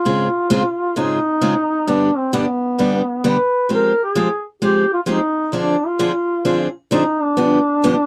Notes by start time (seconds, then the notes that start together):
Already playing: F4
0.05 G#2 C#3 G#3 C4 F4 G#4
0.50 G#2 C#3 G#3 C4 F4 G#4
0.96 G#2 C#3 G#3 C4 D#4 F4 G#4
1.41 G#2 C#3 G#3 C4 F4 G#4
1.87 G2 D3 G3 B3 D4 G4
2.16 C4
2.33 G2 D3 G3 B3 D4 G4
2.78 G2 D3 G3 B3 D4 G4
3.24 G2 D3 G3 B3 D4 G4 B4
3.69 F3 G#3 C4 G4
3.74 A#4
4.04 G#4
4.15 F3 G#3 C4 G4
4.62 F3 G#3 C4 G4
4.93 F4
5.06 F3 G#3 C4 D#4 G4
5.52 D3 F3 C4 D4 G#4
5.86 F4
5.99 D3 F3 C4 D4 G#4
6.45 D3 F3 C4 D4 G#4
6.91 D3 F3 C4 D4 D#4 G#4
7.22 D4
7.37 G2 D3 F3 B3 D4 G4
7.84 G2 D3 F3 B3 D4 G4